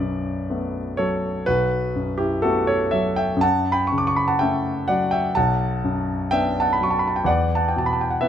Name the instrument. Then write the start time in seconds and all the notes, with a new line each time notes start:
grand piano
Already playing: B1 B4 D5
0.00 F#2
0.50 A3 B3
0.97 F#3 A4 C#5
1.46 B1 F#4 B4
1.95 F#2
2.18 E4 G4
2.42 A3 B3 F#4 A4
2.67 A4 C#5
2.91 F#3 C#5 E5
3.16 E5 G5
3.36 F#2
3.41 F#5 A5
3.72 G5 B5
3.87 C#6
3.92 C#3
3.98 D6
4.07 C#6
4.16 B5
4.28 F#5 A5
4.39 A3 C#4 E5 G5
4.88 F#3 D5 F#5
5.11 E5 G5
5.35 B1 F#5 A5
5.84 F#2
6.31 B3 D4 E5 G5
6.60 F#5 A5
6.73 B5
6.81 F#3 C#6
6.91 A5
6.99 B5
7.07 A5
7.16 G5
7.24 E2 D5 F#5
7.55 F#5 A5
7.68 G5
7.76 B2 A5
7.86 B5
7.93 A5
8.01 G5
8.11 F#5
8.21 B3 E4 B4 E5